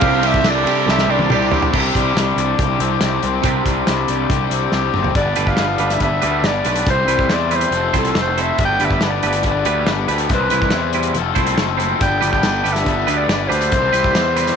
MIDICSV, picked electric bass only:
0, 0, Header, 1, 2, 480
1, 0, Start_track
1, 0, Key_signature, 0, "major"
1, 0, Tempo, 428266
1, 25, Time_signature, 4, 2, 24, 8
1, 16320, End_track
2, 0, Start_track
2, 0, Title_t, "Picked electric bass"
2, 0, Program_c, 0, 34
2, 21, Note_on_c, 0, 36, 98
2, 449, Note_off_c, 0, 36, 0
2, 486, Note_on_c, 0, 36, 92
2, 707, Note_off_c, 0, 36, 0
2, 732, Note_on_c, 0, 48, 91
2, 950, Note_off_c, 0, 48, 0
2, 969, Note_on_c, 0, 36, 76
2, 1188, Note_off_c, 0, 36, 0
2, 1214, Note_on_c, 0, 36, 93
2, 1431, Note_off_c, 0, 36, 0
2, 1462, Note_on_c, 0, 36, 94
2, 1889, Note_off_c, 0, 36, 0
2, 1942, Note_on_c, 0, 36, 76
2, 2119, Note_off_c, 0, 36, 0
2, 2187, Note_on_c, 0, 36, 76
2, 2362, Note_off_c, 0, 36, 0
2, 2415, Note_on_c, 0, 36, 78
2, 2594, Note_off_c, 0, 36, 0
2, 2648, Note_on_c, 0, 36, 88
2, 2830, Note_off_c, 0, 36, 0
2, 2899, Note_on_c, 0, 36, 77
2, 3076, Note_off_c, 0, 36, 0
2, 3131, Note_on_c, 0, 36, 85
2, 3312, Note_off_c, 0, 36, 0
2, 3379, Note_on_c, 0, 36, 86
2, 3557, Note_off_c, 0, 36, 0
2, 3623, Note_on_c, 0, 36, 96
2, 3799, Note_off_c, 0, 36, 0
2, 3854, Note_on_c, 0, 36, 86
2, 4033, Note_off_c, 0, 36, 0
2, 4094, Note_on_c, 0, 36, 75
2, 4273, Note_off_c, 0, 36, 0
2, 4347, Note_on_c, 0, 36, 90
2, 4522, Note_off_c, 0, 36, 0
2, 4586, Note_on_c, 0, 36, 86
2, 4761, Note_off_c, 0, 36, 0
2, 4814, Note_on_c, 0, 36, 74
2, 4994, Note_off_c, 0, 36, 0
2, 5046, Note_on_c, 0, 36, 77
2, 5229, Note_off_c, 0, 36, 0
2, 5298, Note_on_c, 0, 36, 84
2, 5476, Note_off_c, 0, 36, 0
2, 5547, Note_on_c, 0, 30, 88
2, 5722, Note_off_c, 0, 30, 0
2, 5768, Note_on_c, 0, 31, 79
2, 5968, Note_off_c, 0, 31, 0
2, 6019, Note_on_c, 0, 31, 70
2, 6215, Note_off_c, 0, 31, 0
2, 6259, Note_on_c, 0, 31, 78
2, 6455, Note_off_c, 0, 31, 0
2, 6489, Note_on_c, 0, 31, 77
2, 6689, Note_off_c, 0, 31, 0
2, 6723, Note_on_c, 0, 31, 75
2, 6926, Note_off_c, 0, 31, 0
2, 6985, Note_on_c, 0, 38, 78
2, 7179, Note_off_c, 0, 38, 0
2, 7206, Note_on_c, 0, 31, 82
2, 7408, Note_off_c, 0, 31, 0
2, 7452, Note_on_c, 0, 35, 83
2, 7652, Note_off_c, 0, 35, 0
2, 7694, Note_on_c, 0, 36, 85
2, 7893, Note_off_c, 0, 36, 0
2, 7915, Note_on_c, 0, 36, 74
2, 8122, Note_off_c, 0, 36, 0
2, 8161, Note_on_c, 0, 40, 84
2, 8562, Note_off_c, 0, 40, 0
2, 8642, Note_on_c, 0, 29, 74
2, 8847, Note_off_c, 0, 29, 0
2, 8893, Note_on_c, 0, 36, 81
2, 9093, Note_off_c, 0, 36, 0
2, 9138, Note_on_c, 0, 29, 86
2, 9533, Note_off_c, 0, 29, 0
2, 9618, Note_on_c, 0, 31, 87
2, 9817, Note_off_c, 0, 31, 0
2, 9861, Note_on_c, 0, 31, 75
2, 10059, Note_off_c, 0, 31, 0
2, 10103, Note_on_c, 0, 31, 88
2, 10300, Note_off_c, 0, 31, 0
2, 10353, Note_on_c, 0, 31, 78
2, 10546, Note_off_c, 0, 31, 0
2, 10584, Note_on_c, 0, 31, 80
2, 10781, Note_off_c, 0, 31, 0
2, 10817, Note_on_c, 0, 38, 85
2, 11017, Note_off_c, 0, 38, 0
2, 11069, Note_on_c, 0, 31, 85
2, 11264, Note_off_c, 0, 31, 0
2, 11306, Note_on_c, 0, 38, 84
2, 11502, Note_off_c, 0, 38, 0
2, 11538, Note_on_c, 0, 36, 78
2, 11737, Note_off_c, 0, 36, 0
2, 11781, Note_on_c, 0, 36, 80
2, 11979, Note_off_c, 0, 36, 0
2, 12023, Note_on_c, 0, 40, 79
2, 12483, Note_on_c, 0, 29, 79
2, 12500, Note_off_c, 0, 40, 0
2, 12689, Note_off_c, 0, 29, 0
2, 12731, Note_on_c, 0, 36, 84
2, 12934, Note_off_c, 0, 36, 0
2, 12972, Note_on_c, 0, 30, 82
2, 13371, Note_off_c, 0, 30, 0
2, 13456, Note_on_c, 0, 31, 75
2, 13657, Note_off_c, 0, 31, 0
2, 13704, Note_on_c, 0, 31, 75
2, 13902, Note_off_c, 0, 31, 0
2, 13933, Note_on_c, 0, 31, 77
2, 14135, Note_off_c, 0, 31, 0
2, 14181, Note_on_c, 0, 31, 79
2, 14380, Note_off_c, 0, 31, 0
2, 14409, Note_on_c, 0, 31, 78
2, 14613, Note_off_c, 0, 31, 0
2, 14658, Note_on_c, 0, 38, 84
2, 14858, Note_off_c, 0, 38, 0
2, 14882, Note_on_c, 0, 31, 79
2, 15089, Note_off_c, 0, 31, 0
2, 15139, Note_on_c, 0, 38, 84
2, 15339, Note_off_c, 0, 38, 0
2, 15375, Note_on_c, 0, 36, 78
2, 15577, Note_off_c, 0, 36, 0
2, 15608, Note_on_c, 0, 36, 81
2, 15813, Note_off_c, 0, 36, 0
2, 15847, Note_on_c, 0, 40, 77
2, 16248, Note_off_c, 0, 40, 0
2, 16320, End_track
0, 0, End_of_file